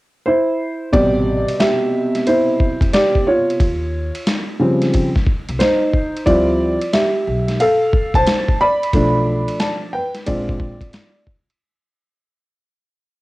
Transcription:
0.26 upright piano E4 C5
0.93 upright bass A1, upright piano B2 C3 G3 G4 D5, kick, ride
1.48 ride
1.60 upright piano G4 E5, snare, hi-hat pedal, ride
2.15 snare, ride
2.27 upright piano E4 C5, ride
2.60 kick
2.81 upright bass F1, kick, ride
2.93 upright piano G4 D5, snare, hi-hat pedal, ride
3.15 kick
3.27 upright piano F4 C#5
3.50 ride
3.60 upright bass D#2, kick, ride
4.15 ride
4.27 snare, hi-hat pedal, ride
4.59 upright piano C#3 F3 G3 C4
4.82 snare, ride
4.94 kick, ride
5.15 kick, snare
5.27 kick
5.49 upright bass C2, ride
5.59 upright piano D#4 C5, snare, hi-hat pedal, ride
5.93 kick
6.17 ride
6.26 upright bass D2, upright piano F3 G3 C4 E4 F4 D5, kick, ride
6.81 ride
6.93 upright piano G4 E5, snare, hi-hat pedal, ride
7.27 upright bass B1
7.48 snare, ride
7.60 upright piano A4 F5, ride
7.93 kick
8.14 upright bass C2, upright piano C5 A5, kick, ride
8.27 snare, hi-hat pedal, ride
8.48 kick
8.61 upright piano D5 B5
8.83 ride
8.93 upright bass B1, upright piano F3 A3 D4, kick, ride
9.48 ride
9.60 upright piano D5 A5, snare, hi-hat pedal, ride
9.93 upright piano B4 G5
10.15 snare, ride
10.26 upright bass A#1, upright piano G#3 C4 D4 F4 D5, kick, ride
10.49 kick
10.60 kick
10.81 upright bass G#1, kick, ride
10.93 snare, hi-hat pedal, ride
11.27 kick
11.50 ride

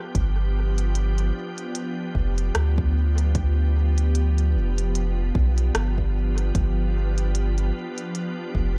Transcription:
Already playing: ambient pad F3 B3 D4 G4
0.15 sub bass G1, kick, closed hi-hat
0.38 ambient pad D4
0.78 closed hi-hat
0.95 closed hi-hat
1.18 closed hi-hat
1.58 closed hi-hat
1.75 closed hi-hat
2.15 sub bass F1, kick
2.38 closed hi-hat
2.55 sub bass D2, cross-stick, closed hi-hat
2.78 kick
3.18 closed hi-hat
3.35 kick, closed hi-hat
3.98 closed hi-hat
4.15 closed hi-hat
4.38 closed hi-hat
4.55 sub bass F1
4.78 closed hi-hat
4.95 closed hi-hat
5.35 sub bass B1, kick
5.58 closed hi-hat
5.75 sub bass G1, cross-stick, closed hi-hat
5.98 kick
6.38 closed hi-hat
6.55 sub bass G1, kick, closed hi-hat
7.18 closed hi-hat
7.35 closed hi-hat
7.58 closed hi-hat
7.98 closed hi-hat
8.15 closed hi-hat
8.55 sub bass F1, kick

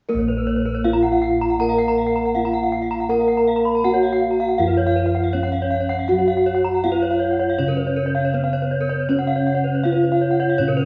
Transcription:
0.09 bronze metallophone A#3 A#4, kettle gongs A#4
0.14 kettle gongs A#1, bronze metallophone C#5
0.28 bronze metallophone B4
0.37 bronze metallophone A#4
0.47 bronze metallophone C#5
0.56 bronze metallophone B4
0.66 bronze metallophone A#4
0.75 bronze metallophone C#5
0.84 kettle gongs B3, bronze metallophone F4 F5
0.93 bronze metallophone A#5
1.03 bronze metallophone F#5
1.12 bronze metallophone F5
1.22 bronze metallophone F#5
1.31 bronze metallophone F5
1.41 bronze metallophone A#5
1.50 bronze metallophone F#5
1.59 bronze metallophone A#3 A#4 A#5
1.69 bronze metallophone F5
1.78 bronze metallophone F#5
1.88 bronze metallophone A#5
1.98 bronze metallophone F5
2.07 bronze metallophone F#5
2.16 bronze metallophone A#5
2.25 bronze metallophone F#5
2.35 kettle gongs B3, bronze metallophone F4 F5
2.45 bronze metallophone A#5
2.53 bronze metallophone F#5
2.64 bronze metallophone F5
2.72 bronze metallophone F#5
2.82 bronze metallophone F5
2.91 bronze metallophone A#5
3.00 bronze metallophone F#5
3.09 bronze metallophone A#3 A#4 A#5, kettle gongs A#4
3.20 bronze metallophone F5
3.28 bronze metallophone F#5
3.37 bronze metallophone A#5
3.48 bronze metallophone F5
3.56 bronze metallophone A#5
3.65 bronze metallophone B5
3.75 bronze metallophone A#5
3.84 kettle gongs B3, bronze metallophone F#4 F#5
3.94 bronze metallophone C#5
4.03 bronze metallophone F5
4.13 bronze metallophone F#5
4.21 bronze metallophone F5
4.31 bronze metallophone A#5
4.40 bronze metallophone F5
4.49 bronze metallophone F#5
4.58 kettle gongs F#2, bronze metallophone F3 F4 F5
4.67 bronze metallophone B4
4.77 bronze metallophone C#5
4.87 bronze metallophone F5
4.96 bronze metallophone B4
5.06 bronze metallophone F5
5.15 bronze metallophone F#5
5.24 bronze metallophone F5
5.33 kettle gongs B3, bronze metallophone C#4 C#5
5.43 bronze metallophone F#5
5.52 bronze metallophone F5
5.62 bronze metallophone C#5
5.71 bronze metallophone F5
5.81 bronze metallophone C#5
5.89 bronze metallophone F#5
5.99 bronze metallophone F5
6.08 bronze metallophone F#3 F#4 F#5, kettle gongs F#4
6.19 bronze metallophone C#5
6.28 bronze metallophone F5
6.37 bronze metallophone F#5
6.46 bronze metallophone C#5
6.55 bronze metallophone F#5
6.64 bronze metallophone A#5
6.74 bronze metallophone F#5
6.84 kettle gongs B3, bronze metallophone F4 F5
6.92 bronze metallophone B4
7.02 bronze metallophone C#5
7.11 bronze metallophone F5
7.20 bronze metallophone C#5
7.31 bronze metallophone F#5
7.39 bronze metallophone C#5
7.50 bronze metallophone F5
7.59 kettle gongs C#3, bronze metallophone C#3 C#4 C#5
7.68 bronze metallophone A#4
7.77 bronze metallophone B4
7.87 bronze metallophone C#5
7.96 bronze metallophone A#4
8.06 bronze metallophone C#5
8.15 bronze metallophone F5
8.25 bronze metallophone C#5
8.34 kettle gongs B3, bronze metallophone B3 B4
8.44 bronze metallophone F5
8.53 bronze metallophone C#5
8.62 bronze metallophone B4
8.71 bronze metallophone C#5
8.81 bronze metallophone A#4
8.89 bronze metallophone C#5
9.00 bronze metallophone B4
9.09 bronze metallophone C#3 C#4 C#5, kettle gongs C#4
9.19 bronze metallophone F#5
9.27 bronze metallophone F5
9.36 bronze metallophone C#5
9.47 bronze metallophone F#5
9.54 bronze metallophone C#5
9.64 bronze metallophone B4
9.75 bronze metallophone C#5
9.84 kettle gongs B3, bronze metallophone F4 F5
9.93 bronze metallophone B4
10.03 bronze metallophone C#5
10.12 bronze metallophone F5
10.21 bronze metallophone C#5
10.31 bronze metallophone F#5
10.40 bronze metallophone C#5
10.49 bronze metallophone F5
10.58 kettle gongs A#2, bronze metallophone C#3 C#4 C#5
10.68 bronze metallophone A#4
10.77 bronze metallophone B4

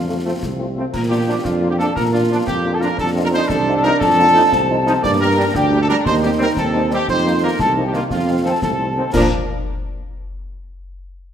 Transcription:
Already playing: tuba F2, euphonium D4, trumpet section F4, flute section F5
0.08 french horn section A3 C4 F4
0.25 french horn section A3 C4 F4, trombone section A3 C4
0.43 tuba C2, concert bass drum, snare
0.58 french horn section A3 C4 F4
0.76 french horn section A3 C4 F4, trombone section A3 C4
0.92 tuba A#2, euphonium A#3, trumpet section A#4, flute section A#5, concert bass drum, snare, crash
1.09 french horn section A#3 D4 F4, trumpet section G4, flute section G5
1.27 trombone section F3 D4, french horn section A#3 D4 F4
1.44 tuba F2, euphonium D4, trumpet section F4, flute section F5, concert bass drum, snare
1.61 french horn section A#3 D4 F4
1.70 trumpet section G4, flute section G5
1.77 trombone section F3 D4, french horn section A#3 D4 F4, trumpet section A4, flute section A5, snare
1.94 tuba A#2, euphonium A#3, trumpet section A#4, flute section A#5, concert bass drum, snare
2.12 french horn section A#3 D4 F4, trumpet section F4, flute section F5
2.29 trombone section F3 D4, french horn section A#3 D4 F4
2.47 tuba F2, trumpet section G4, flute section G5, concert bass drum, snare
2.64 french horn section A#3 D4 F4
2.73 trumpet section A4, flute section A5
2.80 trombone section F3 D4, french horn section A#3 D4 F4, trumpet section A#4, flute section A#5, snare
2.98 tuba F2, euphonium D4, trumpet section A4, flute section A5, concert bass drum, snare
3.15 french horn section C4 D#4 F4
3.24 trumpet section A#4, flute section A#5
3.32 trombone section F3 D#4, french horn section C4 D#4 F4, trumpet section C5, flute section C6
3.48 tuba C2, trumpet section A4, flute section A5, concert bass drum, snare
3.68 french horn section C4 D#4 F4
3.75 trumpet section A4, flute section A5
3.83 trombone section F3 D#4, french horn section C4 D#4 F4, trumpet section A#4, flute section A#5, snare
3.99 tuba F2, trumpet section A4, flute section A5, concert bass drum, snare
4.18 french horn section C4 D#4 F4
4.35 trombone section F3 D#4, french horn section C4 D#4 F4
4.52 tuba C2, euphonium C4, concert bass drum, snare
4.69 french horn section C4 D#4 F4
4.86 trombone section F3 D#4, french horn section C4 D#4 F4, snare
5.03 tuba G2, euphonium A#3, trumpet section D5, flute section D6, concert bass drum, snare, crash
5.20 french horn section G3 D4, trumpet section A#4, flute section A#5
5.37 french horn section G3 D4, trombone section G3 D4
5.55 tuba D2, euphonium D4, trumpet section G4, flute section G5, concert bass drum, snare
5.72 french horn section G3 D4
5.81 trumpet section A4, flute section A5
5.88 french horn section G3 D4, trombone section G3 D4, trumpet section A#4, flute section A#5, snare
6.04 tuba D#2, euphonium D#4, trumpet section C5, flute section C6, concert bass drum, snare
6.22 french horn section G3 C4 D#4, trumpet section G4, flute section G5
6.38 trombone section G3 C4, french horn section G3 C4 D#4, flute section A#5
6.42 trumpet section A#4
6.57 tuba D#2, euphonium C4, trumpet section A4, flute section A5, concert bass drum, snare
6.74 french horn section G3 C4 D#4
6.90 french horn section G3 C4 D#4, trombone section G3 C4, trumpet section G4, flute section G5, snare
7.08 tuba F2, euphonium D#4, trumpet section C5, flute section C6, concert bass drum, snare
7.25 french horn section F3 A#3 D#4
7.42 trombone section D#3 A#3, french horn section F3 A#3 D#4, trumpet section A#4, flute section A#5
7.59 tuba C2, trumpet section A4, flute section A5, concert bass drum, snare
7.76 french horn section F3 A#3 D#4
7.83 trumpet section G4, flute section G5
7.92 trombone section D#3 A#3, french horn section F3 A#3 D#4, trumpet section F4, flute section F5, snare
8.10 tuba F2, euphonium C4, trumpet section F4, flute section F5, concert bass drum, snare
8.27 french horn section F3 C4 D#4
8.44 trombone section D#3 C4, french horn section F3 C4 D#4, trumpet section A4, flute section A5
8.62 tuba C2, euphonium A3, trumpet section A4, flute section A5, concert bass drum, snare
8.79 french horn section F3 C4 D#4
8.96 trombone section D#3 C4, french horn section F3 C4 D#4
9.13 tuba A#2, french horn section F3 A#3 D4, trombone section F3 D4, trumpet section A#4, flute section A#5, concert bass drum, snare, crash

